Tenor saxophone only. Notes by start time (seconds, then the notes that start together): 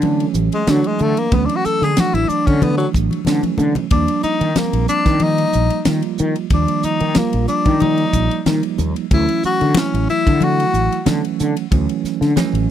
0.54 G#3
0.70 F#3
0.86 G#3
1.02 A3
1.19 A#3
1.34 B3
1.45 D4
1.56 F#4
1.65 A4
1.84 G#4
2.00 F#4
2.14 E4
2.28 D4
2.46 C#4
2.62 B3
2.78 F#3
3.92 D4
4.23 D#4
4.57 A#3
4.88 D4
5.23 D#4
6.54 D4
6.84 D#4
7.17 A#3
7.48 D4
7.81 D#4
9.13 E4
9.45 F#4
9.78 C#4
10.10 E4
10.44 F#4